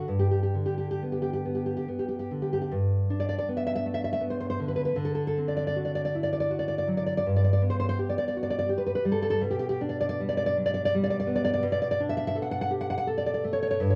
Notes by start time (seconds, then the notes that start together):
0.08 G2
0.19 G4
0.31 G4
0.43 G4
0.54 D3
0.66 G4
0.78 G4
0.91 G4
1.03 B3
1.12 G4
1.22 G4
1.33 G4
1.45 B3
1.55 G4
1.66 G4
1.77 G4
1.88 B3
1.99 G4
2.08 G4
2.19 G4
2.31 D3
2.42 G4
2.53 G4
2.62 G4
2.71 G2
3.10 D4
3.20 D5
3.29 D5
3.38 D5
3.48 B3
3.57 E5
3.67 E5
3.75 E5
3.86 A3
3.94 E5
4.04 E5
4.13 E5
4.20 B3
4.30 C5
4.40 C5
4.50 C5
4.60 D3
4.68 B4
4.76 B4
4.85 B4
4.96 D3
5.05 A4
5.15 A4
5.27 A4
5.38 C4
5.48 D5
5.57 D5
5.67 D5
5.76 F#4
5.85 D5
5.95 D5
6.05 D5
6.15 E4
6.23 D5
6.33 D5
6.40 D5
6.50 F#4
6.59 D5
6.68 D5
6.78 D5
6.87 F#3
6.97 D5
7.06 D5
7.17 D5
7.26 G2
7.36 D5
7.44 D5
7.53 D5
7.62 B3
7.70 C5
7.80 C5
7.89 C5
7.99 G4
8.09 D5
8.18 D5
8.28 D5
8.37 F#4
8.43 D5
8.50 D5
8.59 D5
8.69 G4
8.78 B4
8.86 B4
8.95 B4
9.05 G3
9.12 A4
9.22 A4
9.30 A4
9.41 B2
9.51 G4
9.59 G4
9.69 G4
9.81 D4
9.89 D5
10.01 D5
10.09 D5
10.20 G3
10.29 D5
10.37 D5
10.46 D5
10.57 F#3
10.66 D5
10.74 D5
10.85 D5
10.95 G3
11.04 D5
11.10 D5
11.20 D5
11.27 B3
11.36 D5
11.45 D5
11.54 D5
11.63 B2
11.72 D5
11.82 D5
11.91 D5
12.00 D4
12.09 E5
12.17 E5
12.27 E5
12.35 A4
12.42 F#5
12.51 F#5
12.61 F#5
12.71 G4
12.81 F#5
12.90 F#5
12.98 F#5
13.07 A4
13.18 D5
13.26 D5
13.34 D5
13.44 A3
13.53 C#5
13.63 C#5
13.71 C#5
13.80 G2
13.90 C#5